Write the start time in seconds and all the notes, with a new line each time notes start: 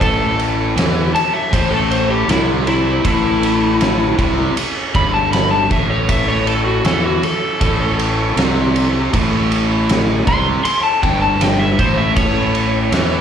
Already playing: A1 A2
0.00 E4 A4 C#5, kick, ride
0.39 ride
0.76 E2 E3, snare, ride
1.14 A5, muted overdriven electric guitar stroke, muted fingered electric bass stroke, ride
1.33 E5
1.52 A1 A2 C5, kick, ride
1.71 A4
1.91 C5, ride
2.10 G4
2.28 C2 C3 E4, snare, ride
2.67 E4, ride
3.04 A1 A2 E4 A4 C#5, kick, ride
3.43 ride
3.81 snare, ride
4.17 C2 C3, kick, ride
4.56 muted fingered electric bass stroke, muted overdriven electric guitar stroke, ride
4.94 G1 G2 B5, kick, ride
5.14 A5
5.33 B5, snare, ride
5.51 A5
5.70 A1 A2 E5, kick, ride
5.90 C#5
6.09 E4 A4 C#5 E5, kick, ride
6.28 C#5
6.47 A4, ride
6.65 F#4
6.85 E2 E3 A4, snare, ride
7.04 F#4
7.23 A4, muted fingered electric bass stroke, muted overdriven electric guitar stroke, ride
7.61 A1 A2, kick, ride
7.99 ride
8.36 C2 C3, snare, ride
8.76 ride
9.13 A1 A2 E4 A4 C#5, kick, ride
9.52 ride
9.89 snare, ride
10.27 C2 C3 C6, kick, ride
10.65 C6, muted fingered electric bass stroke, muted overdriven electric guitar stroke, ride
10.83 A5
11.03 G1 G2 G5, kick, ride
11.22 A5
11.41 G5, snare, ride
11.59 E5
11.79 A1 A2 C5, kick, ride
11.97 E5
12.16 A4 C#5 E5, kick, ride
12.55 ride
12.92 E2 E3, snare, ride